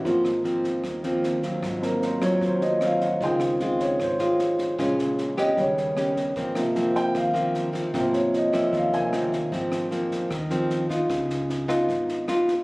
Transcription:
<<
  \new Staff \with { instrumentName = "Grand piano" } { \time 4/4 \key aes \major \tempo 4 = 152 f'8 r2. r8 | r8 bes'8 c''8 des''8 c''8 ees''8 f''8 ges''8 | g''8 r4 des''8 c''4 r4 | r4. ees''8 des''4 r4 |
r4. g''8 f''4 r4 | c''8 des''8 ees''8 fes''8 f''8 aes''8 r4 | r1 | r1 | }
  \new Staff \with { instrumentName = "Grand piano" } { \clef bass \time 4/4 \key aes \major <f bes c'>4. r4 <f bes c'>8 r4 | r8 <ges bes c'>4. r8 <f ges bes c'>8 r4 | <ees f c'>1 | <des aes>2 <des g b>4. r8 |
r8 <c f bes>4. r2 | <c f bes>8 r2 <c f bes>8 r4 | r1 | r1 | }
  \new Staff \with { instrumentName = "Nylon-string guitar" } { \time 4/4 \key aes \major << { <f bes c'>8 r8 <f bes c'>4 r8 <f bes c'>4 <ges c' f'>8~ | <ges c' f'>4. <ges c' f'>4. <ges c' f'>8 r8 | <aes c' f'>4 <aes c' f'>4. <aes c' f'>4. | <aes des' f'>4. <ces' des' g'>4. <b des' g'>4 |
<f bes c'>8 r8 <f bes c'>4. <f bes c'>4 <f bes c'>8 | <f bes c'>4. <f bes c'>4. <f bes c'>8 r8 | <f bes c'>4 <f bes c'>4 r8 <f bes c'>4 <ces' ees' f'>8~ | <ces' ees' f'>4. <ces' ees' f'>4. <ces' ees' f'>8 r8 | } \\ { aes,2 ees2 | aes,2 ees2 | des2 aes,2 | bes,2 ees2 |
aes,2 ees2 | aes,2 ees2 | aes,2 ees2 | des2 aes,2 | } >> }
  \new Staff \with { instrumentName = "Upright bass" } { \clef bass \time 4/4 \key aes \major aes,,2 ees,2 | aes,,2 ees,2 | des,2 aes,,2 | bes,,2 ees,2 |
aes,,2 ees,2 | aes,,2 ees,2 | aes,,2 ees,2 | des,2 aes,,2 | }
  \new DrumStaff \with { instrumentName = "Drums" } \drummode { \time 4/4 <bd sn>8 <ss sn>8 sn8 <bd sn>8 <bd ss sn>8 sn8 sn8 <bd sn>8 | <bd ss sn>8 sn8 sn8 <bd ss sn>8 <bd sn>8 sn8 <ss sn>8 <bd sn>8 | <bd sn>8 <ss sn>8 sn8 <bd sn>8 <bd ss sn>8 sn8 sn8 <bd sn>8 | <bd ss sn>8 sn8 sn8 <bd ss sn>8 <bd sn>8 sn8 <ss sn>8 <bd sn>8 |
<bd sn>8 <ss sn>8 sn8 <bd sn>8 <bd ss sn>8 sn8 sn8 <bd sn>8 | <bd ss sn>8 sn8 sn8 <bd ss sn>8 <bd sn>8 sn8 <ss sn>8 <bd sn>8 | <bd sn>8 <ss sn>8 sn8 <bd sn>8 <bd ss sn>8 sn8 sn8 <bd sn>8 | <bd ss sn>8 sn8 sn8 <bd ss sn>8 <bd sn>8 sn8 <ss sn>8 <bd sn>8 | }
>>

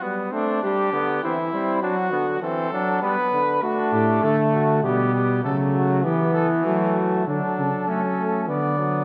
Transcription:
<<
  \new Staff \with { instrumentName = "Cornet" } { \time 3/4 \key d \mixolydian \tempo 4 = 99 r8 d'8 g'4 e'4 | fis'4 a'4 b'4 | fis'8 g'8 a'8 fis'8 g'8 g'8 | a'8 fis'8 g'8 a'8 fis'4 |
a'2 d''4 | }
  \new Staff \with { instrumentName = "Trumpet" } { \time 3/4 \key d \mixolydian b8 c'8 d'8 b8 c'8 c'8 | d'8 b8 c'8 d'8 b8 r8 | d'4 a4 b4 | a4 b4 a4 |
d'4 cis'4 b4 | }
  \new Staff \with { instrumentName = "Trombone" } { \clef bass \time 3/4 \key d \mixolydian g8 a8 g8 d8 e8 g8 | fis8 d8 e8 fis8 g8 d8 | a2 g4 | fis4 e2 |
fis4 a8 a8 b8 fis8 | }
  \new Staff \with { instrumentName = "Bass trombone" } { \clef bass \time 3/4 \key d \mixolydian r2. | r2. | r8 a,8 d4 b,4 | cis4 e4 fis4 |
d8 cis8 fis4 d4 | }
>>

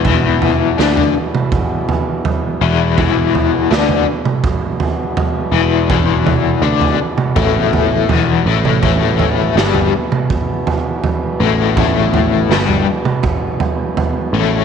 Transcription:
<<
  \new Staff \with { instrumentName = "Overdriven electric guitar" } { \clef bass \time 4/4 \key a \major \tempo 4 = 82 <e, e>4 <d d'>8 r2 <e, e>8 | <e, e>4 <d d'>8 r2 <e, e>8 | <e, e>4 <d d'>8 r8 <a, a>4 <e, e>8 <a, a>8 | <a, a>4 <g, g>8 r2 <a, a>8 |
<a, a>4 <g, g>8 r2 <a, a>8 | }
  \new Staff \with { instrumentName = "Harmonium" } { \clef bass \time 4/4 \key a \major <e, b,>1~ | <e, b,>1~ | <e, b,>1 | <e, b,>1~ |
<e, b,>1 | }
  \new Staff \with { instrumentName = "Picked electric bass" } { \clef bass \time 4/4 \key a \major e,,4 d,8 r2 e,,8 | e,,4 d,8 r2 e,,8 | e,,4 d,8 r8 a,,4 e,,8 a,,8 | a,,4 g,,8 r2 a,,8 |
a,,4 g,,8 r2 a,,8 | }
  \new DrumStaff \with { instrumentName = "Drums" } \drummode { \time 4/4 <bd tomfh>8 tomfh8 sn16 tomfh8 toml16 <bd tomfh>8 tomfh8 tomfh4 | <bd tomfh>8 tomfh8 sn16 tomfh8 toml16 <bd tomfh>8 tomfh8 tomfh4 | <bd tomfh>8 <tomfh toml>8 r16 tomfh8 toml16 <bd tomfh>8 tomfh8 tomfh8. toml16 | <bd tomfh>8 tomfh8 sn16 tomfh8 toml16 <bd tomfh>8 tomfh8 tomfh4 |
<bd tomfh>8 tomfh8 sn16 tomfh8 toml16 <bd tomfh>8 tomfh8 tomfh4 | }
>>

